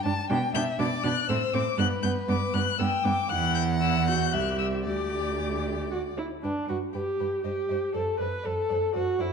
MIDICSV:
0, 0, Header, 1, 5, 480
1, 0, Start_track
1, 0, Key_signature, 1, "major"
1, 0, Tempo, 497100
1, 291, Time_signature, 3, 2, 24, 8
1, 2209, Tempo, 511945
1, 4129, Tempo, 525394
1, 6049, Tempo, 501253
1, 8816, End_track
2, 0, Start_track
2, 0, Title_t, "Violin"
2, 0, Program_c, 0, 40
2, 528, Note_on_c, 0, 91, 118
2, 606, Note_off_c, 0, 91, 0
2, 768, Note_on_c, 0, 86, 107
2, 1005, Note_on_c, 0, 90, 114
2, 1019, Note_off_c, 0, 86, 0
2, 1245, Note_on_c, 0, 88, 97
2, 1259, Note_off_c, 0, 90, 0
2, 1484, Note_on_c, 0, 86, 109
2, 1498, Note_off_c, 0, 88, 0
2, 1717, Note_off_c, 0, 86, 0
2, 1723, Note_on_c, 0, 90, 117
2, 1800, Note_off_c, 0, 90, 0
2, 1958, Note_on_c, 0, 91, 104
2, 2036, Note_off_c, 0, 91, 0
2, 2209, Note_on_c, 0, 86, 109
2, 2443, Note_on_c, 0, 90, 110
2, 2458, Note_off_c, 0, 86, 0
2, 2681, Note_on_c, 0, 88, 92
2, 2695, Note_off_c, 0, 90, 0
2, 2914, Note_on_c, 0, 86, 106
2, 2928, Note_off_c, 0, 88, 0
2, 3156, Note_on_c, 0, 90, 112
2, 3170, Note_off_c, 0, 86, 0
2, 3385, Note_off_c, 0, 90, 0
2, 3391, Note_on_c, 0, 91, 106
2, 3466, Note_off_c, 0, 91, 0
2, 3635, Note_on_c, 0, 88, 101
2, 3878, Note_off_c, 0, 88, 0
2, 3885, Note_on_c, 0, 91, 99
2, 4123, Note_on_c, 0, 90, 91
2, 4137, Note_off_c, 0, 91, 0
2, 4353, Note_off_c, 0, 90, 0
2, 4358, Note_on_c, 0, 88, 89
2, 4432, Note_off_c, 0, 88, 0
2, 4605, Note_on_c, 0, 86, 90
2, 5787, Note_off_c, 0, 86, 0
2, 6051, Note_on_c, 0, 79, 44
2, 6128, Note_off_c, 0, 79, 0
2, 6287, Note_on_c, 0, 79, 38
2, 6363, Note_off_c, 0, 79, 0
2, 6522, Note_on_c, 0, 79, 42
2, 6599, Note_off_c, 0, 79, 0
2, 6769, Note_on_c, 0, 79, 38
2, 6845, Note_off_c, 0, 79, 0
2, 7010, Note_on_c, 0, 75, 42
2, 7087, Note_off_c, 0, 75, 0
2, 7244, Note_on_c, 0, 75, 42
2, 7320, Note_off_c, 0, 75, 0
2, 7483, Note_on_c, 0, 74, 47
2, 7559, Note_off_c, 0, 74, 0
2, 7721, Note_on_c, 0, 74, 44
2, 7798, Note_off_c, 0, 74, 0
2, 7959, Note_on_c, 0, 74, 47
2, 8036, Note_off_c, 0, 74, 0
2, 8204, Note_on_c, 0, 74, 42
2, 8281, Note_off_c, 0, 74, 0
2, 8441, Note_on_c, 0, 74, 45
2, 8518, Note_off_c, 0, 74, 0
2, 8682, Note_on_c, 0, 74, 46
2, 8759, Note_off_c, 0, 74, 0
2, 8816, End_track
3, 0, Start_track
3, 0, Title_t, "Violin"
3, 0, Program_c, 1, 40
3, 53, Note_on_c, 1, 81, 92
3, 287, Note_off_c, 1, 81, 0
3, 294, Note_on_c, 1, 79, 87
3, 527, Note_off_c, 1, 79, 0
3, 534, Note_on_c, 1, 76, 91
3, 771, Note_on_c, 1, 74, 82
3, 786, Note_off_c, 1, 76, 0
3, 1249, Note_off_c, 1, 74, 0
3, 1257, Note_on_c, 1, 72, 91
3, 1722, Note_off_c, 1, 72, 0
3, 1742, Note_on_c, 1, 71, 91
3, 2675, Note_off_c, 1, 71, 0
3, 2697, Note_on_c, 1, 79, 89
3, 3158, Note_off_c, 1, 79, 0
3, 3166, Note_on_c, 1, 78, 102
3, 4127, Note_on_c, 1, 76, 78
3, 4141, Note_off_c, 1, 78, 0
3, 4594, Note_off_c, 1, 76, 0
3, 4600, Note_on_c, 1, 74, 73
3, 5784, Note_off_c, 1, 74, 0
3, 6050, Note_on_c, 1, 71, 42
3, 6126, Note_off_c, 1, 71, 0
3, 6284, Note_on_c, 1, 71, 41
3, 6361, Note_off_c, 1, 71, 0
3, 6538, Note_on_c, 1, 71, 41
3, 6615, Note_off_c, 1, 71, 0
3, 6778, Note_on_c, 1, 71, 39
3, 6854, Note_off_c, 1, 71, 0
3, 7020, Note_on_c, 1, 72, 41
3, 7097, Note_off_c, 1, 72, 0
3, 7263, Note_on_c, 1, 72, 43
3, 7340, Note_off_c, 1, 72, 0
3, 7495, Note_on_c, 1, 72, 49
3, 7571, Note_off_c, 1, 72, 0
3, 7746, Note_on_c, 1, 72, 44
3, 7823, Note_off_c, 1, 72, 0
3, 7975, Note_on_c, 1, 72, 45
3, 8051, Note_off_c, 1, 72, 0
3, 8227, Note_on_c, 1, 72, 45
3, 8304, Note_off_c, 1, 72, 0
3, 8462, Note_on_c, 1, 72, 47
3, 8539, Note_off_c, 1, 72, 0
3, 8697, Note_on_c, 1, 72, 47
3, 8774, Note_off_c, 1, 72, 0
3, 8816, End_track
4, 0, Start_track
4, 0, Title_t, "Viola"
4, 0, Program_c, 2, 41
4, 48, Note_on_c, 2, 62, 73
4, 125, Note_off_c, 2, 62, 0
4, 288, Note_on_c, 2, 62, 82
4, 365, Note_off_c, 2, 62, 0
4, 532, Note_on_c, 2, 62, 74
4, 609, Note_off_c, 2, 62, 0
4, 764, Note_on_c, 2, 62, 74
4, 841, Note_off_c, 2, 62, 0
4, 1006, Note_on_c, 2, 62, 72
4, 1084, Note_off_c, 2, 62, 0
4, 1250, Note_on_c, 2, 60, 76
4, 1327, Note_off_c, 2, 60, 0
4, 1487, Note_on_c, 2, 60, 79
4, 1564, Note_off_c, 2, 60, 0
4, 1729, Note_on_c, 2, 59, 77
4, 1806, Note_off_c, 2, 59, 0
4, 1969, Note_on_c, 2, 59, 70
4, 2046, Note_off_c, 2, 59, 0
4, 2212, Note_on_c, 2, 59, 73
4, 2287, Note_off_c, 2, 59, 0
4, 2449, Note_on_c, 2, 59, 66
4, 2524, Note_off_c, 2, 59, 0
4, 2683, Note_on_c, 2, 59, 74
4, 2758, Note_off_c, 2, 59, 0
4, 2923, Note_on_c, 2, 59, 73
4, 2998, Note_off_c, 2, 59, 0
4, 3164, Note_on_c, 2, 64, 73
4, 3611, Note_off_c, 2, 64, 0
4, 3642, Note_on_c, 2, 64, 69
4, 3890, Note_on_c, 2, 66, 65
4, 3904, Note_off_c, 2, 64, 0
4, 4133, Note_on_c, 2, 67, 74
4, 4147, Note_off_c, 2, 66, 0
4, 4607, Note_off_c, 2, 67, 0
4, 4613, Note_on_c, 2, 67, 65
4, 5556, Note_off_c, 2, 67, 0
4, 5569, Note_on_c, 2, 66, 69
4, 5642, Note_off_c, 2, 66, 0
4, 5809, Note_on_c, 2, 64, 67
4, 5882, Note_off_c, 2, 64, 0
4, 6044, Note_on_c, 2, 62, 58
4, 6285, Note_off_c, 2, 62, 0
4, 6291, Note_on_c, 2, 66, 60
4, 6367, Note_off_c, 2, 66, 0
4, 6528, Note_on_c, 2, 67, 62
4, 7005, Note_off_c, 2, 67, 0
4, 7014, Note_on_c, 2, 67, 67
4, 7486, Note_off_c, 2, 67, 0
4, 7499, Note_on_c, 2, 69, 65
4, 7731, Note_off_c, 2, 69, 0
4, 7737, Note_on_c, 2, 71, 65
4, 7979, Note_on_c, 2, 69, 72
4, 7993, Note_off_c, 2, 71, 0
4, 8452, Note_off_c, 2, 69, 0
4, 8458, Note_on_c, 2, 66, 71
4, 8698, Note_on_c, 2, 64, 72
4, 8712, Note_off_c, 2, 66, 0
4, 8816, Note_off_c, 2, 64, 0
4, 8816, End_track
5, 0, Start_track
5, 0, Title_t, "Cello"
5, 0, Program_c, 3, 42
5, 48, Note_on_c, 3, 43, 74
5, 125, Note_off_c, 3, 43, 0
5, 290, Note_on_c, 3, 47, 94
5, 368, Note_off_c, 3, 47, 0
5, 524, Note_on_c, 3, 47, 83
5, 601, Note_off_c, 3, 47, 0
5, 764, Note_on_c, 3, 47, 85
5, 841, Note_off_c, 3, 47, 0
5, 1005, Note_on_c, 3, 47, 85
5, 1082, Note_off_c, 3, 47, 0
5, 1243, Note_on_c, 3, 45, 87
5, 1321, Note_off_c, 3, 45, 0
5, 1485, Note_on_c, 3, 45, 81
5, 1562, Note_off_c, 3, 45, 0
5, 1720, Note_on_c, 3, 43, 91
5, 1797, Note_off_c, 3, 43, 0
5, 1959, Note_on_c, 3, 43, 76
5, 2037, Note_off_c, 3, 43, 0
5, 2205, Note_on_c, 3, 43, 84
5, 2280, Note_off_c, 3, 43, 0
5, 2445, Note_on_c, 3, 43, 83
5, 2520, Note_off_c, 3, 43, 0
5, 2685, Note_on_c, 3, 43, 85
5, 2760, Note_off_c, 3, 43, 0
5, 2921, Note_on_c, 3, 43, 77
5, 2996, Note_off_c, 3, 43, 0
5, 3156, Note_on_c, 3, 40, 85
5, 4124, Note_on_c, 3, 36, 78
5, 4138, Note_off_c, 3, 40, 0
5, 4607, Note_on_c, 3, 38, 70
5, 4621, Note_off_c, 3, 36, 0
5, 5863, Note_off_c, 3, 38, 0
5, 6048, Note_on_c, 3, 43, 46
5, 6125, Note_off_c, 3, 43, 0
5, 6299, Note_on_c, 3, 43, 45
5, 6375, Note_off_c, 3, 43, 0
5, 6535, Note_on_c, 3, 43, 48
5, 6612, Note_off_c, 3, 43, 0
5, 6781, Note_on_c, 3, 43, 47
5, 6857, Note_off_c, 3, 43, 0
5, 7016, Note_on_c, 3, 43, 47
5, 7093, Note_off_c, 3, 43, 0
5, 7253, Note_on_c, 3, 43, 44
5, 7330, Note_off_c, 3, 43, 0
5, 7494, Note_on_c, 3, 42, 53
5, 7571, Note_off_c, 3, 42, 0
5, 7736, Note_on_c, 3, 42, 47
5, 7813, Note_off_c, 3, 42, 0
5, 7981, Note_on_c, 3, 42, 53
5, 8058, Note_off_c, 3, 42, 0
5, 8217, Note_on_c, 3, 42, 54
5, 8294, Note_off_c, 3, 42, 0
5, 8452, Note_on_c, 3, 42, 54
5, 8529, Note_off_c, 3, 42, 0
5, 8685, Note_on_c, 3, 42, 51
5, 8762, Note_off_c, 3, 42, 0
5, 8816, End_track
0, 0, End_of_file